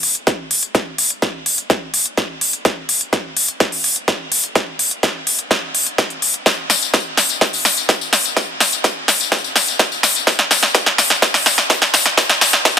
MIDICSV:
0, 0, Header, 1, 2, 480
1, 0, Start_track
1, 0, Tempo, 476190
1, 753, Time_signature, 4, 2, 24, 8
1, 12895, End_track
2, 0, Start_track
2, 0, Title_t, "Drums"
2, 32, Note_on_c, 9, 46, 100
2, 132, Note_off_c, 9, 46, 0
2, 152, Note_on_c, 9, 42, 49
2, 252, Note_off_c, 9, 42, 0
2, 271, Note_on_c, 9, 38, 49
2, 271, Note_on_c, 9, 42, 76
2, 273, Note_on_c, 9, 36, 112
2, 372, Note_off_c, 9, 38, 0
2, 372, Note_off_c, 9, 42, 0
2, 373, Note_off_c, 9, 36, 0
2, 512, Note_on_c, 9, 46, 96
2, 613, Note_off_c, 9, 46, 0
2, 632, Note_on_c, 9, 42, 51
2, 733, Note_off_c, 9, 42, 0
2, 753, Note_on_c, 9, 36, 117
2, 753, Note_on_c, 9, 38, 50
2, 753, Note_on_c, 9, 42, 75
2, 853, Note_off_c, 9, 36, 0
2, 853, Note_off_c, 9, 38, 0
2, 853, Note_off_c, 9, 42, 0
2, 992, Note_on_c, 9, 46, 107
2, 1093, Note_off_c, 9, 46, 0
2, 1112, Note_on_c, 9, 42, 51
2, 1213, Note_off_c, 9, 42, 0
2, 1232, Note_on_c, 9, 36, 116
2, 1232, Note_on_c, 9, 38, 51
2, 1232, Note_on_c, 9, 42, 75
2, 1333, Note_off_c, 9, 36, 0
2, 1333, Note_off_c, 9, 38, 0
2, 1333, Note_off_c, 9, 42, 0
2, 1472, Note_on_c, 9, 46, 102
2, 1573, Note_off_c, 9, 46, 0
2, 1593, Note_on_c, 9, 42, 50
2, 1694, Note_off_c, 9, 42, 0
2, 1712, Note_on_c, 9, 36, 122
2, 1713, Note_on_c, 9, 38, 52
2, 1713, Note_on_c, 9, 42, 76
2, 1813, Note_off_c, 9, 36, 0
2, 1813, Note_off_c, 9, 38, 0
2, 1813, Note_off_c, 9, 42, 0
2, 1952, Note_on_c, 9, 46, 105
2, 2053, Note_off_c, 9, 46, 0
2, 2072, Note_on_c, 9, 42, 50
2, 2173, Note_off_c, 9, 42, 0
2, 2192, Note_on_c, 9, 36, 117
2, 2192, Note_on_c, 9, 38, 55
2, 2192, Note_on_c, 9, 42, 76
2, 2293, Note_off_c, 9, 36, 0
2, 2293, Note_off_c, 9, 38, 0
2, 2293, Note_off_c, 9, 42, 0
2, 2432, Note_on_c, 9, 46, 104
2, 2533, Note_off_c, 9, 46, 0
2, 2552, Note_on_c, 9, 42, 48
2, 2653, Note_off_c, 9, 42, 0
2, 2671, Note_on_c, 9, 38, 55
2, 2671, Note_on_c, 9, 42, 72
2, 2672, Note_on_c, 9, 36, 117
2, 2772, Note_off_c, 9, 38, 0
2, 2772, Note_off_c, 9, 42, 0
2, 2773, Note_off_c, 9, 36, 0
2, 2912, Note_on_c, 9, 46, 106
2, 3013, Note_off_c, 9, 46, 0
2, 3033, Note_on_c, 9, 42, 49
2, 3133, Note_off_c, 9, 42, 0
2, 3152, Note_on_c, 9, 36, 119
2, 3152, Note_on_c, 9, 38, 57
2, 3152, Note_on_c, 9, 42, 72
2, 3253, Note_off_c, 9, 36, 0
2, 3253, Note_off_c, 9, 38, 0
2, 3253, Note_off_c, 9, 42, 0
2, 3392, Note_on_c, 9, 46, 107
2, 3493, Note_off_c, 9, 46, 0
2, 3512, Note_on_c, 9, 42, 50
2, 3613, Note_off_c, 9, 42, 0
2, 3632, Note_on_c, 9, 36, 120
2, 3632, Note_on_c, 9, 38, 60
2, 3632, Note_on_c, 9, 42, 72
2, 3732, Note_off_c, 9, 38, 0
2, 3732, Note_off_c, 9, 42, 0
2, 3733, Note_off_c, 9, 36, 0
2, 3752, Note_on_c, 9, 46, 61
2, 3852, Note_off_c, 9, 46, 0
2, 3871, Note_on_c, 9, 46, 104
2, 3972, Note_off_c, 9, 46, 0
2, 3991, Note_on_c, 9, 42, 49
2, 4092, Note_off_c, 9, 42, 0
2, 4111, Note_on_c, 9, 38, 62
2, 4111, Note_on_c, 9, 42, 72
2, 4112, Note_on_c, 9, 36, 119
2, 4212, Note_off_c, 9, 38, 0
2, 4212, Note_off_c, 9, 42, 0
2, 4213, Note_off_c, 9, 36, 0
2, 4351, Note_on_c, 9, 46, 106
2, 4452, Note_off_c, 9, 46, 0
2, 4472, Note_on_c, 9, 42, 47
2, 4573, Note_off_c, 9, 42, 0
2, 4591, Note_on_c, 9, 38, 61
2, 4591, Note_on_c, 9, 42, 72
2, 4592, Note_on_c, 9, 36, 115
2, 4692, Note_off_c, 9, 38, 0
2, 4692, Note_off_c, 9, 42, 0
2, 4693, Note_off_c, 9, 36, 0
2, 4831, Note_on_c, 9, 46, 106
2, 4932, Note_off_c, 9, 46, 0
2, 4951, Note_on_c, 9, 42, 49
2, 5052, Note_off_c, 9, 42, 0
2, 5072, Note_on_c, 9, 36, 115
2, 5072, Note_on_c, 9, 38, 64
2, 5072, Note_on_c, 9, 42, 73
2, 5172, Note_off_c, 9, 38, 0
2, 5172, Note_off_c, 9, 42, 0
2, 5173, Note_off_c, 9, 36, 0
2, 5311, Note_on_c, 9, 46, 107
2, 5412, Note_off_c, 9, 46, 0
2, 5432, Note_on_c, 9, 42, 50
2, 5533, Note_off_c, 9, 42, 0
2, 5552, Note_on_c, 9, 36, 119
2, 5552, Note_on_c, 9, 38, 69
2, 5552, Note_on_c, 9, 42, 71
2, 5653, Note_off_c, 9, 36, 0
2, 5653, Note_off_c, 9, 38, 0
2, 5653, Note_off_c, 9, 42, 0
2, 5792, Note_on_c, 9, 46, 104
2, 5893, Note_off_c, 9, 46, 0
2, 5912, Note_on_c, 9, 42, 46
2, 6013, Note_off_c, 9, 42, 0
2, 6031, Note_on_c, 9, 38, 71
2, 6031, Note_on_c, 9, 42, 72
2, 6032, Note_on_c, 9, 36, 118
2, 6132, Note_off_c, 9, 38, 0
2, 6132, Note_off_c, 9, 42, 0
2, 6133, Note_off_c, 9, 36, 0
2, 6152, Note_on_c, 9, 42, 34
2, 6252, Note_off_c, 9, 42, 0
2, 6272, Note_on_c, 9, 46, 108
2, 6373, Note_off_c, 9, 46, 0
2, 6392, Note_on_c, 9, 42, 47
2, 6493, Note_off_c, 9, 42, 0
2, 6512, Note_on_c, 9, 36, 118
2, 6512, Note_on_c, 9, 38, 73
2, 6512, Note_on_c, 9, 42, 74
2, 6517, Note_on_c, 9, 54, 43
2, 6612, Note_off_c, 9, 38, 0
2, 6612, Note_off_c, 9, 42, 0
2, 6613, Note_off_c, 9, 36, 0
2, 6618, Note_off_c, 9, 54, 0
2, 6752, Note_on_c, 9, 38, 74
2, 6752, Note_on_c, 9, 46, 104
2, 6757, Note_on_c, 9, 54, 78
2, 6853, Note_off_c, 9, 38, 0
2, 6853, Note_off_c, 9, 46, 0
2, 6858, Note_off_c, 9, 54, 0
2, 6873, Note_on_c, 9, 42, 50
2, 6878, Note_on_c, 9, 54, 33
2, 6973, Note_off_c, 9, 42, 0
2, 6979, Note_off_c, 9, 54, 0
2, 6992, Note_on_c, 9, 36, 117
2, 6992, Note_on_c, 9, 38, 75
2, 6992, Note_on_c, 9, 42, 71
2, 6998, Note_on_c, 9, 54, 43
2, 7093, Note_off_c, 9, 36, 0
2, 7093, Note_off_c, 9, 38, 0
2, 7093, Note_off_c, 9, 42, 0
2, 7098, Note_off_c, 9, 54, 0
2, 7232, Note_on_c, 9, 38, 73
2, 7232, Note_on_c, 9, 46, 102
2, 7237, Note_on_c, 9, 54, 77
2, 7333, Note_off_c, 9, 38, 0
2, 7333, Note_off_c, 9, 46, 0
2, 7338, Note_off_c, 9, 54, 0
2, 7352, Note_on_c, 9, 42, 49
2, 7357, Note_on_c, 9, 54, 33
2, 7453, Note_off_c, 9, 42, 0
2, 7458, Note_off_c, 9, 54, 0
2, 7472, Note_on_c, 9, 36, 117
2, 7472, Note_on_c, 9, 38, 74
2, 7472, Note_on_c, 9, 42, 72
2, 7477, Note_on_c, 9, 54, 43
2, 7573, Note_off_c, 9, 36, 0
2, 7573, Note_off_c, 9, 38, 0
2, 7573, Note_off_c, 9, 42, 0
2, 7578, Note_off_c, 9, 54, 0
2, 7592, Note_on_c, 9, 46, 58
2, 7598, Note_on_c, 9, 54, 30
2, 7693, Note_off_c, 9, 46, 0
2, 7698, Note_off_c, 9, 54, 0
2, 7712, Note_on_c, 9, 38, 78
2, 7712, Note_on_c, 9, 46, 104
2, 7717, Note_on_c, 9, 54, 78
2, 7812, Note_off_c, 9, 38, 0
2, 7812, Note_off_c, 9, 46, 0
2, 7818, Note_off_c, 9, 54, 0
2, 7832, Note_on_c, 9, 42, 49
2, 7837, Note_on_c, 9, 54, 33
2, 7933, Note_off_c, 9, 42, 0
2, 7938, Note_off_c, 9, 54, 0
2, 7952, Note_on_c, 9, 36, 117
2, 7952, Note_on_c, 9, 38, 77
2, 7952, Note_on_c, 9, 42, 74
2, 7957, Note_on_c, 9, 54, 44
2, 8053, Note_off_c, 9, 36, 0
2, 8053, Note_off_c, 9, 38, 0
2, 8053, Note_off_c, 9, 42, 0
2, 8058, Note_off_c, 9, 54, 0
2, 8077, Note_on_c, 9, 54, 31
2, 8178, Note_off_c, 9, 54, 0
2, 8192, Note_on_c, 9, 38, 80
2, 8192, Note_on_c, 9, 46, 105
2, 8197, Note_on_c, 9, 54, 78
2, 8293, Note_off_c, 9, 38, 0
2, 8293, Note_off_c, 9, 46, 0
2, 8298, Note_off_c, 9, 54, 0
2, 8313, Note_on_c, 9, 42, 49
2, 8318, Note_on_c, 9, 54, 33
2, 8414, Note_off_c, 9, 42, 0
2, 8419, Note_off_c, 9, 54, 0
2, 8432, Note_on_c, 9, 36, 114
2, 8433, Note_on_c, 9, 38, 79
2, 8433, Note_on_c, 9, 42, 76
2, 8439, Note_on_c, 9, 54, 45
2, 8533, Note_off_c, 9, 36, 0
2, 8534, Note_off_c, 9, 38, 0
2, 8534, Note_off_c, 9, 42, 0
2, 8539, Note_off_c, 9, 54, 0
2, 8673, Note_on_c, 9, 38, 85
2, 8673, Note_on_c, 9, 46, 102
2, 8679, Note_on_c, 9, 54, 79
2, 8774, Note_off_c, 9, 38, 0
2, 8774, Note_off_c, 9, 46, 0
2, 8779, Note_off_c, 9, 54, 0
2, 8793, Note_on_c, 9, 42, 51
2, 8799, Note_on_c, 9, 54, 34
2, 8894, Note_off_c, 9, 42, 0
2, 8900, Note_off_c, 9, 54, 0
2, 8913, Note_on_c, 9, 36, 112
2, 8914, Note_on_c, 9, 38, 81
2, 8914, Note_on_c, 9, 42, 77
2, 8919, Note_on_c, 9, 54, 45
2, 9013, Note_off_c, 9, 36, 0
2, 9014, Note_off_c, 9, 38, 0
2, 9014, Note_off_c, 9, 42, 0
2, 9020, Note_off_c, 9, 54, 0
2, 9154, Note_on_c, 9, 38, 85
2, 9154, Note_on_c, 9, 46, 99
2, 9159, Note_on_c, 9, 54, 81
2, 9254, Note_off_c, 9, 38, 0
2, 9254, Note_off_c, 9, 46, 0
2, 9260, Note_off_c, 9, 54, 0
2, 9273, Note_on_c, 9, 42, 51
2, 9279, Note_on_c, 9, 54, 35
2, 9374, Note_off_c, 9, 42, 0
2, 9380, Note_off_c, 9, 54, 0
2, 9393, Note_on_c, 9, 36, 115
2, 9393, Note_on_c, 9, 38, 84
2, 9393, Note_on_c, 9, 42, 76
2, 9399, Note_on_c, 9, 54, 44
2, 9493, Note_off_c, 9, 36, 0
2, 9494, Note_off_c, 9, 38, 0
2, 9494, Note_off_c, 9, 42, 0
2, 9499, Note_off_c, 9, 54, 0
2, 9518, Note_on_c, 9, 54, 32
2, 9619, Note_off_c, 9, 54, 0
2, 9632, Note_on_c, 9, 38, 86
2, 9632, Note_on_c, 9, 46, 101
2, 9638, Note_on_c, 9, 54, 81
2, 9733, Note_off_c, 9, 38, 0
2, 9733, Note_off_c, 9, 46, 0
2, 9739, Note_off_c, 9, 54, 0
2, 9752, Note_on_c, 9, 42, 49
2, 9758, Note_on_c, 9, 54, 33
2, 9853, Note_off_c, 9, 42, 0
2, 9859, Note_off_c, 9, 54, 0
2, 9872, Note_on_c, 9, 36, 111
2, 9872, Note_on_c, 9, 38, 89
2, 9872, Note_on_c, 9, 42, 80
2, 9878, Note_on_c, 9, 54, 48
2, 9973, Note_off_c, 9, 36, 0
2, 9973, Note_off_c, 9, 38, 0
2, 9973, Note_off_c, 9, 42, 0
2, 9979, Note_off_c, 9, 54, 0
2, 9998, Note_on_c, 9, 54, 32
2, 10099, Note_off_c, 9, 54, 0
2, 10112, Note_on_c, 9, 38, 89
2, 10112, Note_on_c, 9, 46, 102
2, 10118, Note_on_c, 9, 54, 79
2, 10213, Note_off_c, 9, 38, 0
2, 10213, Note_off_c, 9, 46, 0
2, 10219, Note_off_c, 9, 54, 0
2, 10233, Note_on_c, 9, 42, 51
2, 10238, Note_on_c, 9, 54, 33
2, 10333, Note_off_c, 9, 42, 0
2, 10339, Note_off_c, 9, 54, 0
2, 10352, Note_on_c, 9, 36, 111
2, 10352, Note_on_c, 9, 38, 92
2, 10352, Note_on_c, 9, 42, 80
2, 10358, Note_on_c, 9, 54, 47
2, 10453, Note_off_c, 9, 36, 0
2, 10453, Note_off_c, 9, 38, 0
2, 10453, Note_off_c, 9, 42, 0
2, 10459, Note_off_c, 9, 54, 0
2, 10472, Note_on_c, 9, 38, 80
2, 10573, Note_off_c, 9, 38, 0
2, 10592, Note_on_c, 9, 38, 93
2, 10592, Note_on_c, 9, 46, 105
2, 10598, Note_on_c, 9, 54, 84
2, 10693, Note_off_c, 9, 38, 0
2, 10693, Note_off_c, 9, 46, 0
2, 10699, Note_off_c, 9, 54, 0
2, 10712, Note_on_c, 9, 38, 80
2, 10712, Note_on_c, 9, 42, 54
2, 10717, Note_on_c, 9, 54, 36
2, 10813, Note_off_c, 9, 38, 0
2, 10813, Note_off_c, 9, 42, 0
2, 10818, Note_off_c, 9, 54, 0
2, 10831, Note_on_c, 9, 38, 92
2, 10831, Note_on_c, 9, 42, 80
2, 10832, Note_on_c, 9, 36, 114
2, 10837, Note_on_c, 9, 54, 47
2, 10932, Note_off_c, 9, 38, 0
2, 10932, Note_off_c, 9, 42, 0
2, 10933, Note_off_c, 9, 36, 0
2, 10938, Note_off_c, 9, 54, 0
2, 10951, Note_on_c, 9, 38, 83
2, 11052, Note_off_c, 9, 38, 0
2, 11072, Note_on_c, 9, 38, 94
2, 11072, Note_on_c, 9, 46, 100
2, 11077, Note_on_c, 9, 54, 82
2, 11172, Note_off_c, 9, 38, 0
2, 11172, Note_off_c, 9, 46, 0
2, 11178, Note_off_c, 9, 54, 0
2, 11192, Note_on_c, 9, 38, 81
2, 11192, Note_on_c, 9, 42, 55
2, 11197, Note_on_c, 9, 54, 35
2, 11292, Note_off_c, 9, 38, 0
2, 11292, Note_off_c, 9, 42, 0
2, 11298, Note_off_c, 9, 54, 0
2, 11312, Note_on_c, 9, 36, 119
2, 11312, Note_on_c, 9, 38, 92
2, 11312, Note_on_c, 9, 42, 82
2, 11318, Note_on_c, 9, 54, 48
2, 11413, Note_off_c, 9, 36, 0
2, 11413, Note_off_c, 9, 38, 0
2, 11413, Note_off_c, 9, 42, 0
2, 11419, Note_off_c, 9, 54, 0
2, 11432, Note_on_c, 9, 38, 84
2, 11432, Note_on_c, 9, 46, 57
2, 11438, Note_on_c, 9, 54, 32
2, 11533, Note_off_c, 9, 38, 0
2, 11533, Note_off_c, 9, 46, 0
2, 11539, Note_off_c, 9, 54, 0
2, 11552, Note_on_c, 9, 38, 97
2, 11552, Note_on_c, 9, 46, 99
2, 11558, Note_on_c, 9, 54, 82
2, 11653, Note_off_c, 9, 38, 0
2, 11653, Note_off_c, 9, 46, 0
2, 11658, Note_off_c, 9, 54, 0
2, 11672, Note_on_c, 9, 38, 85
2, 11672, Note_on_c, 9, 42, 52
2, 11678, Note_on_c, 9, 54, 35
2, 11773, Note_off_c, 9, 38, 0
2, 11773, Note_off_c, 9, 42, 0
2, 11778, Note_off_c, 9, 54, 0
2, 11793, Note_on_c, 9, 36, 114
2, 11793, Note_on_c, 9, 38, 100
2, 11793, Note_on_c, 9, 42, 84
2, 11798, Note_on_c, 9, 54, 47
2, 11893, Note_off_c, 9, 36, 0
2, 11894, Note_off_c, 9, 38, 0
2, 11894, Note_off_c, 9, 42, 0
2, 11899, Note_off_c, 9, 54, 0
2, 11913, Note_on_c, 9, 38, 86
2, 11918, Note_on_c, 9, 54, 32
2, 12013, Note_off_c, 9, 38, 0
2, 12019, Note_off_c, 9, 54, 0
2, 12033, Note_on_c, 9, 38, 99
2, 12033, Note_on_c, 9, 46, 101
2, 12038, Note_on_c, 9, 54, 82
2, 12134, Note_off_c, 9, 38, 0
2, 12134, Note_off_c, 9, 46, 0
2, 12139, Note_off_c, 9, 54, 0
2, 12153, Note_on_c, 9, 38, 86
2, 12153, Note_on_c, 9, 42, 54
2, 12158, Note_on_c, 9, 54, 35
2, 12254, Note_off_c, 9, 38, 0
2, 12254, Note_off_c, 9, 42, 0
2, 12259, Note_off_c, 9, 54, 0
2, 12273, Note_on_c, 9, 36, 116
2, 12273, Note_on_c, 9, 38, 103
2, 12273, Note_on_c, 9, 42, 84
2, 12278, Note_on_c, 9, 54, 47
2, 12373, Note_off_c, 9, 36, 0
2, 12374, Note_off_c, 9, 38, 0
2, 12374, Note_off_c, 9, 42, 0
2, 12379, Note_off_c, 9, 54, 0
2, 12394, Note_on_c, 9, 38, 90
2, 12399, Note_on_c, 9, 54, 33
2, 12494, Note_off_c, 9, 38, 0
2, 12500, Note_off_c, 9, 54, 0
2, 12513, Note_on_c, 9, 38, 104
2, 12513, Note_on_c, 9, 46, 104
2, 12518, Note_on_c, 9, 54, 83
2, 12614, Note_off_c, 9, 38, 0
2, 12614, Note_off_c, 9, 46, 0
2, 12619, Note_off_c, 9, 54, 0
2, 12633, Note_on_c, 9, 38, 92
2, 12633, Note_on_c, 9, 42, 56
2, 12638, Note_on_c, 9, 54, 35
2, 12734, Note_off_c, 9, 38, 0
2, 12734, Note_off_c, 9, 42, 0
2, 12739, Note_off_c, 9, 54, 0
2, 12753, Note_on_c, 9, 36, 118
2, 12753, Note_on_c, 9, 38, 103
2, 12753, Note_on_c, 9, 42, 83
2, 12758, Note_on_c, 9, 54, 46
2, 12853, Note_off_c, 9, 36, 0
2, 12854, Note_off_c, 9, 38, 0
2, 12854, Note_off_c, 9, 42, 0
2, 12859, Note_off_c, 9, 54, 0
2, 12895, End_track
0, 0, End_of_file